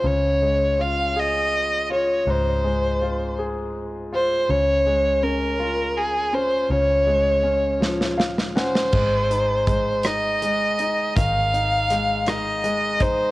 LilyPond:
<<
  \new Staff \with { instrumentName = "Violin" } { \time 6/8 \key des \major \tempo 4. = 54 des''4 f''8 ees''4 des''8 | c''4. r4 c''8 | des''4 bes'4 aes'8 c''8 | des''2 r8 c''8~ |
c''4. ees''4. | f''4. ees''4 c''8 | }
  \new Staff \with { instrumentName = "Grand piano" } { \time 6/8 \key des \major << { r2. | r2. | r2. | r2 f''8 ges''8 |
r2. | r2. | } \\ { des8 aes8 f'8 aes'4 f'8 | aes,8 aes8 f'8 aes'4 f'8 | des8 aes8 des'8 f'4 des'8 | des8 aes8 des'8 f4 des'8 |
aes8 ees'8 aes8 ees'8 aes8 ees'8 | ees8 ees'8 aes8 ees'8 aes8 ees'8 | } >> }
  \new Staff \with { instrumentName = "Fingered electric bass" } { \clef bass \time 6/8 \key des \major des,2. | des,2. | des,2. | des,2. |
aes,,2. | aes,,2. | }
  \new DrumStaff \with { instrumentName = "Drums" } \drummode { \time 6/8 r4. r4. | r4. r4. | r4. r4. | r4. sn16 sn16 sn16 sn16 sn16 sn16 |
<cymc bd>8 hh8 <hh bd>8 <hh ss>8 hh8 hh8 | <hh bd>8 hh8 <hh ss>8 <hh ss>8 hh8 <hh bd>8 | }
>>